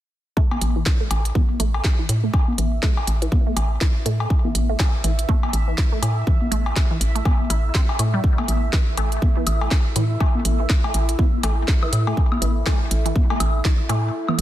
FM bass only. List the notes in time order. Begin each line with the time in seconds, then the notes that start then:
0.61 A1
1.11 A1
1.60 A1
2.09 A2
2.58 A1
3.07 A1
3.56 A1
4.06 A2
4.55 A1
5.04 A1
5.53 A1
6.02 A2
6.52 A1
7.01 A1
7.50 A1
7.99 A2
8.48 A1
8.97 A1
9.47 A1
9.96 A2
10.45 A1
10.94 A1
11.43 A1
11.93 A2
12.42 A1
12.91 A1
13.40 A1
13.89 A2